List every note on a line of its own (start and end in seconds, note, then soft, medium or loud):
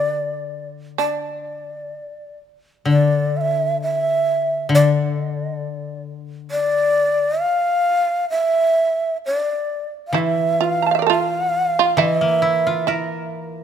0.00 1.92 D3 medium
0.00 0.68 D4 medium
0.00 0.67 D5 loud
0.98 2.37 D4 medium
0.98 2.37 D5 medium
2.85 4.68 D3 medium
2.85 3.38 D5 medium
3.37 3.42 F5 medium
3.41 3.81 E5 loud
3.82 4.68 E5 loud
4.69 7.37 D3 medium
4.74 5.19 D5 medium
5.19 5.32 D#5 medium
5.32 5.45 D5 medium
5.45 5.57 D#5 medium
5.57 6.02 D5 medium
6.51 7.42 D5 loud
7.40 8.29 F5 loud
8.30 9.17 E5 loud
9.26 9.90 D5 medium
10.08 10.20 F5 medium
10.13 11.96 E3 medium
10.13 10.58 E4 medium
10.18 10.66 E5 medium
10.61 10.86 F4 medium
10.61 11.09 F5 medium
10.82 11.02 E4 medium
10.82 10.86 A#5 soft
10.86 10.91 A5 soft
10.91 10.99 E5 soft
10.91 10.94 F5 soft
10.99 11.09 A#4 medium
10.99 11.06 D5 soft
11.07 11.73 F4 medium
11.07 11.19 A4 medium
11.07 12.01 F5 medium
11.79 11.98 F4 medium
11.97 13.64 E3 medium
11.97 12.42 E4 medium
11.97 12.19 D#5 medium
12.19 13.64 A#3 soft
12.19 13.33 E5 medium
12.42 12.53 D#4 medium
12.42 13.64 E4 soft
12.53 12.84 D4 medium
12.67 13.64 F4 soft
12.87 13.29 E4 medium
12.87 13.64 A#4 soft